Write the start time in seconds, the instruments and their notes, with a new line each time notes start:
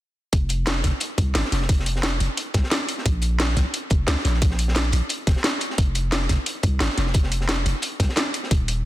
0.33 808-style bass F1, kick, closed hi-hat
0.49 closed hi-hat
0.66 snare, closed hi-hat
0.76 snare
0.84 808-style bass F1, kick, snare, closed hi-hat
1.00 closed hi-hat
1.18 808-style bass C2, kick, closed hi-hat
1.35 808-style bass G#1, snare, closed hi-hat
1.45 snare
1.52 808-style bass F1, snare, closed hi-hat
1.61 snare
1.69 kick, closed hi-hat
1.79 snare
1.86 closed hi-hat
1.96 snare
2.03 snare, closed hi-hat
2.20 808-style bass F1, closed hi-hat
2.37 closed hi-hat
2.54 808-style bass C2, kick, snare, closed hi-hat
2.63 snare
2.71 snare, closed hi-hat
2.89 closed hi-hat
2.98 snare
3.06 808-style bass A#1, kick, closed hi-hat
3.22 closed hi-hat
3.39 snare, closed hi-hat
3.49 snare
3.56 808-style bass A#1, kick, snare, closed hi-hat
3.74 closed hi-hat
3.90 808-style bass F1, kick, closed hi-hat
4.07 808-style bass C#2, snare, closed hi-hat
4.17 snare
4.25 808-style bass A#1, snare, closed hi-hat
4.34 snare
4.42 kick, closed hi-hat
4.50 snare
4.59 closed hi-hat
4.68 snare
4.75 snare, closed hi-hat
4.92 808-style bass A#1, closed hi-hat
5.09 closed hi-hat
5.27 808-style bass F1, kick, snare, closed hi-hat
5.36 snare
5.44 snare, closed hi-hat
5.61 closed hi-hat
5.70 snare
5.78 808-style bass F1, kick, closed hi-hat
5.95 closed hi-hat
6.12 snare, closed hi-hat
6.21 snare
6.29 808-style bass F1, kick, snare, closed hi-hat
6.46 closed hi-hat
6.63 808-style bass C2, kick, closed hi-hat
6.80 808-style bass G#1, snare, closed hi-hat
6.89 snare
6.98 808-style bass F1, snare, closed hi-hat
7.07 snare
7.14 kick, closed hi-hat
7.23 snare
7.32 closed hi-hat
7.41 snare
7.49 snare, closed hi-hat
7.66 808-style bass F1, closed hi-hat
7.82 closed hi-hat
8.00 808-style bass C2, kick, snare, closed hi-hat
8.09 snare
8.16 snare, closed hi-hat
8.34 closed hi-hat
8.43 snare
8.51 808-style bass D#1, kick, closed hi-hat
8.68 closed hi-hat